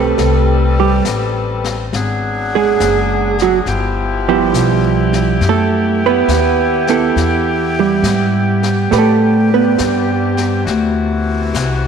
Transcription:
0.00 0.15 B1 medium
0.00 1.89 G3 medium
0.00 1.00 A3 medium
0.00 1.01 C4 medium
0.00 1.89 C4 medium
0.00 0.79 G4 medium
0.00 0.74 A4 medium
0.00 1.88 A4 medium
0.00 1.01 B4 medium
0.00 1.89 B4 medium
0.18 1.03 C2 medium
0.18 brush sweep soft
0.18 snare soft
0.80 1.06 G3 medium
0.80 1.06 G4 medium
1.05 1.91 A1 medium
1.05 snare medium
1.05 hi-hat pedal medium
1.64 snare soft
1.93 2.77 G#1 medium
1.93 3.67 F#3 medium
1.93 11.88 B3 medium
1.93 3.67 D4 medium
1.93 3.67 G#4 medium
1.93 brush sweep soft
1.93 snare soft
2.55 3.37 G#3 medium
2.55 3.37 G#4 loud
2.80 3.65 F#1 medium
2.80 snare medium
2.80 hi-hat pedal medium
3.39 3.58 F#4 medium
3.39 snare soft
3.43 3.59 F#3 medium
3.66 4.51 G1 medium
3.66 5.41 F3 medium
3.66 8.72 E4 medium
3.66 10.63 G4 medium
3.66 brush sweep soft
3.66 snare soft
4.29 5.38 F3 medium
4.29 5.40 G3 medium
4.29 5.38 B3 medium
4.29 5.38 E4 medium
4.29 5.39 G4 medium
4.53 5.38 B1 medium
4.53 snare medium
4.53 hi-hat pedal medium
5.13 snare soft
5.41 6.26 F#2 medium
5.41 brush sweep soft
5.41 snare soft
5.49 6.03 A3 medium
5.49 6.03 A4 medium
6.06 6.88 B3 medium
6.06 6.90 B4 loud
6.28 7.13 D#2 medium
6.28 snare medium
6.28 hi-hat pedal soft
6.87 7.99 B3 medium
6.87 7.99 E4 medium
6.87 7.99 A4 medium
6.87 snare soft
7.16 8.01 E2 medium
7.16 brush sweep soft
7.16 snare soft
7.79 8.90 G3 medium
7.79 8.90 G4 medium
8.03 8.88 G#2 medium
8.03 snare medium
8.03 hi-hat pedal medium
8.63 snare soft
8.89 9.77 A2 medium
8.89 11.88 C3 medium
8.89 10.64 G3 medium
8.89 8.98 A3 medium
8.89 10.67 G4 medium
8.89 9.53 B4 medium
8.89 brush sweep soft
8.89 snare soft
8.98 9.52 A3 medium
8.98 9.52 A4 medium
9.54 10.65 B3 medium
9.54 10.64 B4 medium
9.78 10.64 G2 medium
9.78 snare medium
9.78 hi-hat pedal medium
10.37 snare soft
10.64 11.52 D2 medium
10.64 11.88 E3 medium
10.64 11.88 F#4 medium
10.64 brush sweep soft
10.64 snare soft
11.53 11.88 C2 medium
11.53 snare medium
11.53 hi-hat pedal medium

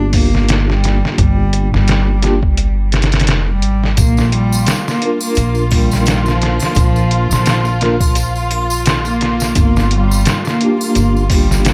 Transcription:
0.00 0.99 G1 medium
0.00 2.18 A#3 medium
0.00 2.19 D4 medium
0.00 2.19 F4 medium
0.00 2.21 G4 medium
0.13 0.63 A#3 medium
0.13 kick medium
0.13 open hi-hat medium
0.35 snare soft
0.49 snare loud
0.49 closed hi-hat medium
0.70 1.15 G3 medium
0.70 snare soft
0.84 snare medium
0.84 closed hi-hat medium
1.05 snare medium
1.18 1.69 G1 medium
1.18 1.68 G3 medium
1.18 kick loud
1.18 closed hi-hat medium
1.53 closed hi-hat medium
1.74 3.29 G1 medium
1.74 2.20 G3 loud
1.74 snare soft
1.88 snare loud
1.88 closed hi-hat medium
2.22 2.39 A#3 medium
2.22 2.39 D4 medium
2.22 2.40 F4 medium
2.22 2.40 G4 loud
2.22 snare soft
2.22 closed hi-hat medium
2.43 kick medium
2.57 closed hi-hat medium
2.92 snare medium
2.92 closed hi-hat medium
3.02 snare medium
3.02 closed hi-hat medium
3.12 snare medium
3.12 closed hi-hat medium
3.20 snare medium
3.20 closed hi-hat medium
3.27 3.63 F1 loud
3.27 snare loud
3.27 closed hi-hat medium
3.50 3.94 G3 medium
3.62 3.94 G#1 medium
3.62 closed hi-hat medium
3.84 snare soft
3.97 4.64 A#1 loud
3.97 4.30 A#3 loud
3.97 11.73 F4 medium
3.97 kick loud
3.97 closed hi-hat medium
3.97 tambourine medium
4.17 snare soft
4.17 tambourine soft
4.32 4.82 G3 medium
4.32 closed hi-hat medium
4.52 tambourine medium
4.66 snare loud
4.66 closed hi-hat medium
4.66 tambourine medium
4.88 5.19 A#3 medium
4.88 snare soft
4.88 tambourine soft
5.00 7.77 A#3 medium
5.00 7.78 D4 medium
5.00 7.78 F4 medium
5.00 closed hi-hat medium
5.06 7.79 A#4 medium
5.20 5.68 A#3 medium
5.20 tambourine medium
5.20 triangle medium
5.35 6.58 A#1 medium
5.35 closed hi-hat medium
5.35 tambourine medium
5.55 tambourine soft
5.71 6.22 G3 medium
5.71 kick medium
5.71 open hi-hat medium
5.71 triangle medium
5.91 snare soft
5.91 tambourine medium
6.06 snare loud
6.06 closed hi-hat medium
6.06 tambourine medium
6.26 6.73 F3 medium
6.26 snare soft
6.26 tambourine soft
6.42 snare medium
6.42 closed hi-hat medium
6.60 snare medium
6.60 tambourine medium
6.60 triangle medium
6.75 7.27 A#1 medium
6.75 7.26 F3 loud
6.75 kick loud
6.75 closed hi-hat medium
6.75 tambourine medium
6.96 tambourine soft
7.11 closed hi-hat medium
7.31 9.53 A#1 medium
7.31 7.77 F3 loud
7.31 snare medium
7.31 tambourine medium
7.46 snare loud
7.46 closed hi-hat medium
7.46 tambourine medium
7.65 tambourine soft
7.81 7.98 A#3 loud
7.81 7.98 D4 medium
7.81 7.98 F4 medium
7.81 7.98 A#4 loud
7.81 snare soft
7.81 closed hi-hat medium
8.00 kick medium
8.00 tambourine medium
8.00 triangle medium
8.15 closed hi-hat medium
8.15 tambourine medium
8.35 tambourine soft
8.51 closed hi-hat medium
8.51 triangle medium
8.70 tambourine medium
8.86 snare loud
8.86 closed hi-hat medium
8.86 tambourine medium
9.05 9.52 A#3 medium
9.05 tambourine soft
9.21 snare soft
9.21 closed hi-hat medium
9.40 snare soft
9.40 tambourine medium
9.55 10.23 G1 medium
9.55 9.89 A#3 loud
9.55 kick loud
9.55 closed hi-hat medium
9.55 tambourine medium
9.76 snare soft
9.76 tambourine soft
9.91 10.41 G3 loud
9.91 closed hi-hat medium
10.11 tambourine medium
10.25 snare loud
10.25 closed hi-hat medium
10.25 tambourine medium
10.45 10.77 A#3 medium
10.45 snare soft
10.45 tambourine soft
10.59 11.73 A#3 medium
10.59 11.73 D4 medium
10.59 11.73 F4 medium
10.59 closed hi-hat medium
10.64 11.73 G4 medium
10.81 11.27 A#3 loud
10.81 tambourine medium
10.81 triangle medium
10.95 11.73 G1 medium
10.95 closed hi-hat medium
10.95 tambourine medium
11.16 tambourine soft
11.30 11.73 G3 medium
11.30 kick medium
11.30 open hi-hat medium
11.30 triangle medium
11.51 snare soft
11.51 tambourine medium
11.65 snare loud
11.65 closed hi-hat medium
11.65 tambourine medium

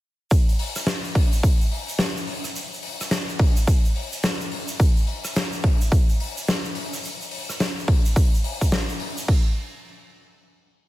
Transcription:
0.31 kick loud
0.31 open hi-hat medium
0.31 shaker medium
0.49 open hi-hat soft
0.49 shaker soft
0.59 open hi-hat medium
0.75 cross-stick medium
0.75 open hi-hat soft
0.75 shaker medium
0.86 snare loud
0.86 open hi-hat medium
0.86 shaker medium
1.04 open hi-hat soft
1.04 shaker soft
1.15 kick loud
1.15 open hi-hat medium
1.32 open hi-hat medium
1.32 shaker medium
1.43 kick loud
1.43 open hi-hat medium
1.43 shaker medium
1.61 open hi-hat soft
1.61 shaker soft
1.71 open hi-hat medium
1.88 open hi-hat medium
1.88 shaker medium
1.99 snare loud
1.99 open hi-hat medium
1.99 shaker medium
2.16 open hi-hat soft
2.16 shaker soft
2.27 open hi-hat medium
2.44 cross-stick soft
2.44 shaker medium
2.56 open hi-hat medium
2.56 shaker medium
2.72 open hi-hat soft
2.72 shaker soft
2.83 open hi-hat medium
3.00 cross-stick medium
3.00 open hi-hat medium
3.00 shaker medium
3.11 snare loud
3.11 open hi-hat medium
3.11 shaker medium
3.29 shaker soft
3.39 kick loud
3.39 open hi-hat medium
3.56 open hi-hat medium
3.56 shaker medium
3.67 kick loud
3.67 open hi-hat medium
3.67 shaker medium
3.85 open hi-hat soft
3.85 shaker soft
3.96 open hi-hat medium
4.12 open hi-hat medium
4.12 shaker medium
4.23 snare loud
4.23 open hi-hat medium
4.23 shaker medium
4.41 open hi-hat soft
4.41 shaker soft
4.52 open hi-hat medium
4.68 open hi-hat soft
4.68 shaker medium
4.79 kick loud
4.79 open hi-hat medium
4.79 shaker medium
4.96 open hi-hat soft
4.96 shaker soft
5.07 open hi-hat medium
5.25 cross-stick soft
5.25 open hi-hat medium
5.25 shaker medium
5.35 snare loud
5.35 open hi-hat medium
5.35 shaker medium
5.52 open hi-hat soft
5.52 shaker soft
5.64 kick loud
5.64 open hi-hat medium
5.81 shaker medium
5.92 kick loud
5.92 open hi-hat medium
5.92 shaker medium
6.09 open hi-hat soft
6.09 shaker soft
6.20 open hi-hat medium
6.37 open hi-hat soft
6.37 shaker medium
6.47 snare loud
6.47 open hi-hat medium
6.47 shaker medium
6.65 open hi-hat soft
6.65 shaker soft
6.75 open hi-hat medium
6.93 cross-stick soft
6.93 open hi-hat soft
6.93 shaker medium
7.03 open hi-hat medium
7.03 shaker medium
7.20 open hi-hat soft
7.20 shaker soft
7.31 open hi-hat medium
7.49 cross-stick medium
7.49 shaker medium
7.60 snare loud
7.60 open hi-hat medium
7.60 shaker medium
7.77 open hi-hat soft
7.77 shaker soft
7.88 kick loud
7.88 open hi-hat medium
8.05 open hi-hat medium
8.05 shaker medium
8.16 kick loud
8.16 open hi-hat medium
8.16 shaker medium
8.25 open hi-hat soft
8.34 shaker soft
8.44 open hi-hat medium
8.61 kick medium
8.61 open hi-hat soft
8.61 shaker medium
8.72 snare loud
8.72 open hi-hat medium
8.72 shaker medium
8.89 open hi-hat soft
8.89 shaker soft
9.00 open hi-hat medium
9.17 open hi-hat soft
9.17 shaker medium
9.28 kick loud
9.28 crash medium

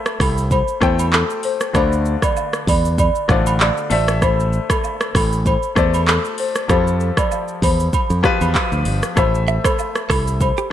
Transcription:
0.00 0.42 A3 medium
0.00 0.43 A4 medium
0.00 0.46 C5 medium
0.00 0.43 E5 medium
0.06 cross-stick loud
0.06 shaker medium
0.20 0.61 C2 loud
0.20 0.47 A4 medium
0.20 kick loud
0.20 cross-stick loud
0.20 open hi-hat medium
0.20 high agogo medium
0.20 shaker medium
0.38 shaker loud
0.51 0.66 C5 medium
0.51 kick loud
0.51 high agogo medium
0.51 shaker medium
0.68 shaker medium
0.80 1.22 E2 medium
0.80 1.68 A3 medium
0.80 1.68 A4 medium
0.80 1.69 C5 medium
0.80 0.97 C5 medium
0.80 1.69 G5 medium
0.80 kick loud
0.80 cross-stick loud
0.80 shaker medium
0.99 high agogo medium
0.99 shaker loud
1.13 1.28 A4 medium
1.13 clap loud
1.13 shaker medium
1.30 shaker medium
1.43 1.59 C5 medium
1.43 open hi-hat medium
1.43 shaker soft
1.61 cross-stick medium
1.61 shaker medium
1.73 2.15 D2 loud
1.73 2.90 D3 medium
1.73 2.90 A3 medium
1.73 2.90 F4 medium
1.73 1.90 C5 loud
1.73 2.91 D5 medium
1.73 kick loud
1.73 cross-stick loud
1.73 high agogo medium
1.73 shaker medium
1.93 shaker medium
2.05 shaker medium
2.22 2.50 D5 medium
2.22 kick loud
2.22 cross-stick medium
2.22 high agogo medium
2.22 shaker loud
2.37 low woodblock medium
2.37 shaker medium
2.53 cross-stick medium
2.53 shaker medium
2.67 3.08 E2 medium
2.67 2.94 D5 medium
2.67 kick loud
2.67 open hi-hat medium
2.67 high agogo medium
2.67 shaker medium
2.85 shaker loud
2.98 3.13 D5 medium
2.98 kick loud
2.98 high agogo medium
2.98 shaker medium
3.15 shaker medium
3.28 3.70 A1 medium
3.28 3.90 D3 medium
3.28 3.88 A3 medium
3.28 3.91 F4 medium
3.28 3.44 C5 medium
3.28 3.92 D5 medium
3.28 kick loud
3.28 cross-stick loud
3.28 shaker medium
3.46 high agogo medium
3.46 shaker medium
3.60 3.75 D5 medium
3.60 clap loud
3.60 shaker medium
3.77 shaker medium
3.90 4.58 A1 loud
3.90 5.06 A3 medium
3.90 5.07 A4 medium
3.90 5.07 C5 medium
3.90 4.06 D5 medium
3.90 5.07 E5 medium
3.90 open hi-hat medium
3.90 shaker soft
4.08 cross-stick loud
4.08 shaker medium
4.22 4.37 C5 loud
4.22 kick loud
4.22 cross-stick medium
4.22 high agogo medium
4.22 shaker medium
4.40 shaker medium
4.53 shaker medium
4.70 4.97 A4 medium
4.70 kick loud
4.70 cross-stick loud
4.70 high agogo medium
4.70 shaker loud
4.84 low woodblock medium
4.84 shaker medium
5.01 cross-stick loud
5.01 shaker medium
5.15 5.55 A1 medium
5.15 5.42 A4 medium
5.15 kick loud
5.15 cross-stick loud
5.15 open hi-hat medium
5.15 high agogo medium
5.15 shaker medium
5.32 shaker loud
5.46 5.61 C5 medium
5.46 kick loud
5.46 high agogo medium
5.46 shaker medium
5.63 shaker medium
5.75 6.17 E2 medium
5.75 6.63 A3 medium
5.75 6.63 A4 medium
5.75 6.64 C5 medium
5.75 5.92 C5 medium
5.75 6.64 D5 medium
5.75 kick loud
5.75 cross-stick loud
5.75 shaker medium
5.94 high agogo medium
5.94 shaker medium
6.08 6.23 A4 medium
6.08 clap loud
6.08 shaker medium
6.25 shaker medium
6.38 6.54 C5 medium
6.38 open hi-hat medium
6.38 shaker medium
6.55 cross-stick medium
6.55 shaker medium
6.68 7.10 F2 loud
6.68 7.85 F3 medium
6.68 7.85 F4 medium
6.68 7.85 G4 medium
6.68 7.86 A4 medium
6.68 6.85 C5 medium
6.68 kick loud
6.68 cross-stick medium
6.68 high agogo medium
6.68 shaker medium
6.87 shaker medium
7.00 shaker medium
7.17 7.44 D5 medium
7.17 kick loud
7.17 cross-stick loud
7.17 high agogo medium
7.17 shaker loud
7.31 low woodblock medium
7.31 shaker medium
7.48 shaker medium
7.62 7.88 E2 medium
7.62 7.89 C5 medium
7.62 kick loud
7.62 open hi-hat medium
7.62 high agogo medium
7.62 shaker medium
7.80 shaker medium
7.93 kick loud
7.93 high agogo medium
7.93 shaker medium
8.10 8.22 F2 medium
8.10 shaker medium
8.23 9.10 F3 loud
8.23 9.11 F4 medium
8.23 9.11 G4 medium
8.23 9.12 B4 loud
8.23 kick loud
8.23 cross-stick loud
8.23 shaker medium
8.41 8.53 E2 medium
8.41 high agogo medium
8.41 shaker medium
8.55 kick medium
8.55 clap loud
8.55 low woodblock medium
8.55 shaker medium
8.72 8.84 D2 medium
8.72 shaker medium
8.85 9.00 G1 medium
8.85 open hi-hat medium
8.85 shaker soft
9.03 cross-stick medium
9.03 shaker medium
9.16 9.58 A1 loud
9.16 10.32 A3 medium
9.16 10.32 A4 medium
9.16 10.33 C5 medium
9.16 9.32 C5 loud
9.16 10.33 E5 medium
9.16 kick loud
9.16 cross-stick loud
9.16 high agogo medium
9.16 shaker medium
9.35 shaker medium
9.48 9.61 E5 medium
9.48 shaker medium
9.64 9.92 A4 medium
9.64 9.76 C5 medium
9.64 kick loud
9.64 cross-stick loud
9.64 high agogo medium
9.64 shaker loud
9.79 low woodblock medium
9.79 shaker medium
9.95 cross-stick medium
9.95 shaker medium
10.10 10.50 C2 medium
10.10 10.23 A4 medium
10.10 10.37 A4 medium
10.10 kick loud
10.10 cross-stick loud
10.10 open hi-hat medium
10.10 high agogo medium
10.10 shaker medium
10.27 shaker medium
10.41 10.56 C5 medium
10.41 kick loud
10.41 high agogo medium
10.41 shaker medium
10.57 10.68 G4 medium
10.57 shaker medium

